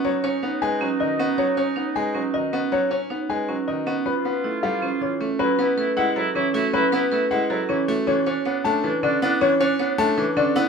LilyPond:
<<
  \new Staff \with { instrumentName = "Grand piano" } { \time 7/8 \key des \mixolydian \tempo 4 = 157 des''8 r4 aes''8 r8 ees''8 r8 | des''8 r4 aes''8 r8 ees''8 r8 | des''8 r4 aes''8 r8 ees''8 r8 | ces''8 r4 f''8 r8 des''8 r8 |
\key fis \minor b'8 r4 fis''8 r8 cis''8 r8 | b'8 r4 fis''8 r8 cis''8 r8 | cis''8 r4 a''8 r8 d''8 r8 | cis''8 r4 a''8 r8 d''8 r8 | }
  \new Staff \with { instrumentName = "Marimba" } { \time 7/8 \key des \mixolydian des''8 des''8 ees'8 ces''8 des'8 ges'8 des'8 | des''8 des''8 ees'8 ces''8 des'8 ges'8 des'8 | des''8 des''8 ees'8 ces''8 des'8 ges'8 des'8 | ces''8 ces''8 e'8 a'8 des'8 f'8 des'8 |
\key fis \minor cis'8 b'8 b'8 e'8 a'8 cis'8 fis'8 | cis'8 b'8 b'8 e'8 a'8 cis'8 fis'8 | cis'8 cis''8 cis''8 d'8 b'8 cis'8 e'8 | cis'8 cis''8 cis''8 d'8 b'8 cis'8 e'8 | }
  \new Staff \with { instrumentName = "Oboe" } { \time 7/8 \key des \mixolydian ees'2.~ ees'8~ | ees'2. r8 | r2. r8 | f'2. r8 |
\key fis \minor e'8 e'8 e'8 e'8 e'8 e'8 e'8 | e'8 e'8 e'8 e'8 e'8 e'8 r8 | d'8 d'8 d'8 d'8 d'8 d'8 d'8 | d'8 d'8 d'8 d'8 d'8 d'8 r8 | }
  \new Staff \with { instrumentName = "Grand piano" } { \clef bass \time 7/8 \key des \mixolydian ges8 des'8 ces'8 aes8 ges8 ees8 ces'8 | ges8 des'8 ces'8 aes8 ges8 ees8 ces'8 | ges8 des'8 ces'8 aes8 ges8 ees8 ces'8 | f8 ces'8 a8 g8 f8 e8 a8 |
\key fis \minor fis8 b8 a8 gis8 fis8 e8 a8 | fis8 b8 a8 gis8 fis8 e8 a8 | e8 cis'8 b8 a8 e8 d8 b8 | e8 cis'8 b8 a8 e8 d8 b8 | }
>>